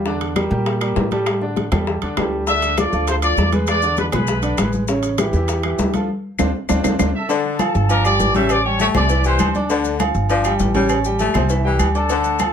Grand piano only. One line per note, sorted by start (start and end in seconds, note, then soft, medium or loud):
0.06 0.31 D3 medium
0.06 0.31 D4 medium
0.06 0.31 D5 medium
0.36 0.48 G3 medium
0.36 0.48 G4 medium
0.36 0.49 A#4 medium
0.51 0.76 G3 medium
0.51 0.76 G4 medium
0.51 0.76 A#4 medium
0.81 1.06 G3 medium
0.81 1.06 G4 medium
0.81 1.06 A#4 medium
1.12 1.36 G3 medium
1.12 1.36 G4 medium
1.12 1.36 A4 medium
1.42 1.66 D3 medium
1.42 1.67 D4 medium
1.42 1.67 D5 medium
1.72 1.96 G3 medium
1.72 1.97 G4 medium
1.72 1.97 A4 medium
2.03 2.15 D3 medium
2.03 2.15 D4 medium
2.03 2.15 D5 medium
2.18 2.42 G3 medium
2.18 2.42 G4 medium
2.18 2.43 A4 medium
2.48 2.72 D3 loud
2.48 2.73 D4 medium
2.48 2.73 D5 medium
2.78 2.90 F3 medium
2.78 2.90 F4 medium
2.78 2.90 A4 medium
2.93 3.18 F3 medium
2.93 3.18 F4 medium
2.93 3.18 A4 medium
3.23 3.47 F3 medium
3.23 3.48 F4 medium
3.23 3.48 A4 medium
3.53 3.78 G#3 medium
3.53 3.78 G#4 medium
3.53 3.78 B4 medium
3.82 4.07 D3 medium
3.82 4.08 D4 medium
3.82 4.08 D5 medium
4.12 4.37 G#3 medium
4.12 4.37 G#4 medium
4.12 4.37 B4 medium
4.42 4.55 D3 medium
4.42 4.55 D4 medium
4.42 4.55 D5 medium
4.58 4.83 G#3 medium
4.58 4.83 G#4 medium
4.58 4.83 B4 medium
4.88 5.13 C#3 medium
4.88 5.13 C#4 medium
4.88 5.13 C#5 medium
5.19 5.31 E3 medium
5.19 5.31 E4 medium
5.19 5.31 G4 medium
5.34 5.59 E3 medium
5.34 5.59 E4 medium
5.34 5.59 G4 medium
5.64 5.89 E3 medium
5.64 5.89 E4 medium
5.64 5.89 G4 medium
5.94 6.07 F3 medium
5.94 6.07 F4 medium
5.94 6.07 A4 medium
6.39 6.49 C4 loud
6.39 6.49 D4 medium
6.39 6.49 F4 medium
6.69 6.79 C4 loud
6.69 6.79 D4 loud
6.69 6.79 F4 loud
6.83 6.94 C4 medium
6.83 6.93 D4 medium
6.83 6.94 F4 medium
6.99 7.09 C4 medium
6.99 7.09 D4 medium
6.99 7.09 F4 loud
7.29 7.54 D3 medium
7.29 7.54 D4 loud
7.29 7.54 D5 loud
7.60 7.85 F3 medium
7.60 7.85 F4 medium
7.60 7.85 F5 medium
7.90 8.02 D4 medium
7.90 8.02 D5 medium
7.90 8.03 D6 medium
8.05 8.30 G3 medium
8.05 8.30 G4 medium
8.05 8.30 G5 medium
8.35 8.59 C#3 medium
8.35 8.60 C#4 loud
8.35 8.60 C#5 loud
8.65 8.90 G3 medium
8.65 8.90 G4 medium
8.65 8.90 G5 medium
8.94 9.07 C3 loud
8.94 9.07 C4 medium
8.94 9.07 C5 loud
9.10 9.22 E3 medium
9.10 9.22 E4 medium
9.10 9.23 E5 medium
9.25 9.49 G3 medium
9.25 9.49 G4 medium
9.25 9.50 G5 medium
9.55 9.67 D4 medium
9.55 9.67 D5 medium
9.55 9.68 D6 medium
9.70 9.94 D3 loud
9.70 9.94 D4 medium
9.70 9.95 D5 medium
10.00 10.25 F3 medium
10.00 10.25 F4 medium
10.00 10.25 F5 medium
10.30 10.42 D4 medium
10.30 10.42 D5 medium
10.30 10.43 D6 medium
10.45 10.70 G3 medium
10.45 10.70 G4 medium
10.45 10.70 G5 medium
10.74 10.99 C#3 loud
10.74 10.99 C#4 medium
10.74 11.00 C#5 medium
11.05 11.30 G3 medium
11.05 11.30 G4 medium
11.05 11.30 G5 medium
11.35 11.47 C3 medium
11.35 11.47 C4 medium
11.35 11.48 C5 loud
11.50 11.62 E3 medium
11.50 11.62 E4 medium
11.50 11.62 E5 medium
11.64 11.89 G3 medium
11.64 11.89 G4 medium
11.64 11.89 G5 medium
11.94 12.07 D4 medium
11.94 12.07 D5 medium
11.94 12.07 D6 medium
12.10 12.35 D3 loud
12.10 12.35 D4 medium
12.10 12.35 D5 loud
12.40 12.53 F3 medium
12.40 12.53 F4 medium
12.40 12.53 F5 medium